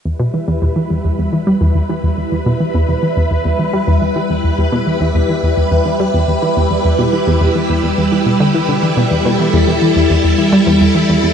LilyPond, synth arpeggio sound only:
\new Staff \with { instrumentName = "Synth arpeggio sound" } { \clef bass \time 4/4 \key e \minor \tempo 4 = 106 e,16 b,16 e16 e,16 e,16 e16 e,16 e,16 e,16 e16 g16 e,16 e,16 e16 e,16 e,16 | e,16 b,16 e16 e,16 e,16 e16 e,16 e,16 e,16 e16 g16 e,16 e,16 e16 e,16 e,16 | e,16 b,16 e16 e,16 e,16 e16 e,16 e,16 e,16 e16 g16 e,16 e,16 e16 e,16 e,16 | e,16 b,16 e16 e,16 e,16 e16 e,16 e,16 e,16 e16 b,16 d16 e16 d16 e16 b,16 |
e,16 b,16 e16 e,16 e,16 e16 e,16 e,16 e,16 e16 g16 e,16 e,16 e16 e,16 e,16 | }